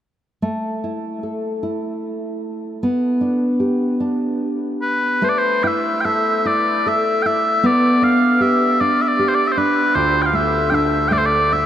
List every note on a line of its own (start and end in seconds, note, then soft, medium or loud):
0.42 2.83 A3 medium
0.84 1.62 E4 soft
1.23 2.89 A4 soft
1.63 2.89 E4 soft
2.83 5.25 B3 medium
3.21 3.99 D4 soft
3.60 5.29 G4 soft
4.00 5.30 D4 soft
4.82 5.25 B4 medium
5.22 7.64 A3 medium
5.22 7.63 B4 medium
5.22 5.29 C5 medium
5.29 5.38 D5 medium
5.38 5.64 C5 medium
5.64 6.44 E4 soft
5.64 6.01 E5 medium
5.64 5.67 G5 medium
6.01 6.05 G5 medium
6.05 6.85 A4 soft
6.05 6.47 E5 medium
6.45 7.25 E4 soft
6.45 6.88 D5 medium
6.86 7.72 A4 soft
6.86 7.22 E5 medium
7.22 7.72 E4 soft
7.22 7.66 E5 medium
7.22 7.26 G5 medium
7.63 9.95 B3 medium
7.63 9.95 B4 medium
7.63 8.04 D5 medium
8.02 8.80 D4 soft
8.02 8.42 F5 medium
8.41 9.18 G4 soft
8.41 8.80 E5 medium
8.80 9.57 D4 medium
8.80 9.02 D5 medium
9.02 9.08 E5 medium
9.08 9.28 D5 medium
9.19 10.03 G4 soft
9.28 9.35 C5 soft
9.35 9.47 D5 medium
9.47 9.52 E5 soft
9.52 9.58 C5 soft
9.57 10.33 D4 soft
9.57 9.95 B4 medium
9.95 11.66 D2 medium
9.95 11.66 F4 medium
9.95 10.22 C5 medium
10.22 10.36 F5 medium
10.22 10.26 G5 medium
10.33 11.10 A3 soft
10.33 10.70 E5 medium
10.70 11.51 D4 soft
10.70 10.74 G5 medium
10.74 11.08 E5 medium
11.08 11.66 A3 soft
11.08 11.13 G5 medium
11.13 11.18 D5 medium
11.18 11.26 C5 medium
11.26 11.53 D5 medium
11.53 11.66 D4 soft
11.53 11.66 E5 medium